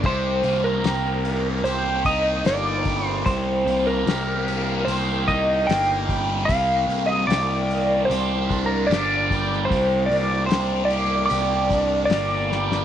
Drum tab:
CC |x---------------|----------------|----------------|----------------|
HH |--o-o-o-o-o-o-o-|o-o-o-o-o-o-o-o-|o-o-o-o-o-o-o-o-|o-o-o-o-o-o-o---|
SD |----o-------o---|----o-------o---|----o-------o--o|----o-------o-oo|
BD |o---------o---o-|o---------o---o-|o---------o---o-|o---------o-----|